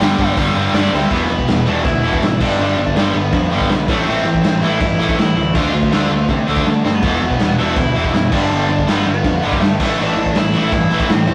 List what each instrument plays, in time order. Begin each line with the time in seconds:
Already playing: overdriven electric guitar G5
0.00 picked electric bass G1, overdriven electric guitar G2 D3 G3, snare, open hi-hat
0.19 picked electric bass G1, overdriven electric guitar G2 D3 G3, kick
0.37 picked electric bass G1, overdriven electric guitar G2 D3 G3, kick, open hi-hat
0.55 picked electric bass G1, overdriven electric guitar G2 D3 G3
0.74 picked electric bass G2, overdriven electric guitar G2 D3 G3 D5, snare, open hi-hat
0.93 picked electric bass D2, overdriven electric guitar G2 D3 G3 C4 E5, snare
1.04 overdriven electric guitar B3
1.10 picked electric bass E1, overdriven electric guitar E2 B2 E3 B3, kick, crash
1.29 picked electric bass E1, overdriven electric guitar E2 B2, crash
1.39 kick
1.48 picked electric bass E1, overdriven electric guitar E2 B2, snare, crash
1.66 picked electric bass E1, overdriven electric guitar E2 B2 E3 D4, crash
1.84 picked electric bass D2, overdriven electric guitar E2 B2 E4, kick, crash
2.03 picked electric bass E1, overdriven electric guitar E2 B2 E3, crash
2.13 kick
2.22 picked electric bass G#1, overdriven electric guitar E2 B2, snare, crash
2.41 picked electric bass G1, overdriven electric guitar G2 D3 G3 D4, kick, crash
2.59 picked electric bass G1, overdriven electric guitar G2 D3 G3, crash
2.78 picked electric bass G1, overdriven electric guitar G2 D3, crash
2.87 kick
2.96 picked electric bass G1, overdriven electric guitar G2 D3 G3 B3, snare, crash
3.14 picked electric bass G1, overdriven electric guitar G2 D3 B3, crash
3.33 picked electric bass F2, overdriven electric guitar G2 D3, kick, crash
3.51 picked electric bass G1, overdriven electric guitar G2 D3 G3, crash
3.61 kick
3.69 picked electric bass B1, overdriven electric guitar G2 D3, snare, crash
3.88 picked electric bass A1, overdriven electric guitar A2 E3 A3 D4, kick, crash
3.99 overdriven electric guitar C4
4.06 picked electric bass A1, overdriven electric guitar A2 E3 A3 C4, crash
4.25 picked electric bass A1, overdriven electric guitar A2 E3, crash
4.35 kick
4.43 picked electric bass A1, overdriven electric guitar A2 E3, snare, crash
4.61 picked electric bass A1, overdriven electric guitar A2 E3 A3 E4, crash
4.81 picked electric bass G2, overdriven electric guitar A2 E3, kick, crash
4.99 picked electric bass A1, overdriven electric guitar A2 E3 A3, crash
5.09 kick
5.17 picked electric bass A2, overdriven electric guitar A2 E3 E4, snare, crash
5.36 picked electric bass D2, overdriven electric guitar A2 E3, crash
5.55 picked electric bass D2, overdriven electric guitar D3 A3 D4 F4, kick, crash
5.74 picked electric bass D2, overdriven electric guitar D3 A3, crash
5.83 kick
5.92 picked electric bass D2, overdriven electric guitar D3 A3 D4, snare, crash
6.10 picked electric bass D2, overdriven electric guitar D3 A3, crash
6.29 picked electric bass C3, overdriven electric guitar D3 A3, kick, crash
6.47 picked electric bass D2, overdriven electric guitar D3 A3 D4, crash
6.56 kick
6.66 overdriven electric guitar D3 A3, picked electric bass D3, snare
6.85 picked electric bass G2, overdriven electric guitar D3 A3 C4, snare
6.95 overdriven electric guitar B3
7.03 picked electric bass E1, overdriven electric guitar E2 B2 E3 B3, kick, crash
7.22 picked electric bass E1, overdriven electric guitar E2 B2, crash
7.31 kick
7.39 picked electric bass E1, overdriven electric guitar E2 B2, snare, crash
7.58 picked electric bass E1, overdriven electric guitar E2 B2 E3 D4, crash
7.76 picked electric bass D2, overdriven electric guitar E2 B2 E4, kick, crash
7.95 picked electric bass E1, overdriven electric guitar E2 B2 E3, crash
8.04 kick
8.14 picked electric bass F#1, overdriven electric guitar E2 B2, snare, crash
8.32 picked electric bass G1, overdriven electric guitar G2 D3 G3 D4, kick, crash
8.50 picked electric bass G1, overdriven electric guitar G2 D3 G3, crash
8.69 picked electric bass G1, overdriven electric guitar G2 D3, crash
8.78 kick
8.87 picked electric bass G1, overdriven electric guitar G2 D3 G3 B3, snare, crash
9.06 picked electric bass G1, overdriven electric guitar G2 D3 B3, crash
9.24 picked electric bass F2, overdriven electric guitar G2 D3, kick, crash
9.43 picked electric bass G1, overdriven electric guitar G2 D3 G3, crash
9.52 kick
9.59 overdriven electric guitar G2 D3 A3, picked electric bass G2, snare, crash
9.80 picked electric bass A1, overdriven electric guitar A2 E3 A3, kick, crash
9.98 picked electric bass A1, overdriven electric guitar A2 E3 A3 D4, crash
10.17 picked electric bass A1, overdriven electric guitar A2 E3, crash
10.26 kick
10.35 picked electric bass A1, overdriven electric guitar A2 E3 E4, snare, crash
10.53 picked electric bass A1, overdriven electric guitar A2 E3 A3, crash
10.72 picked electric bass G2, overdriven electric guitar A2 E3 E4, kick, crash
10.90 picked electric bass A1, overdriven electric guitar A2 E3 A3, crash
11.00 kick
11.09 picked electric bass A2, overdriven electric guitar A2 E3 C4, snare, crash
11.27 picked electric bass E2, overdriven electric guitar A2 E3, crash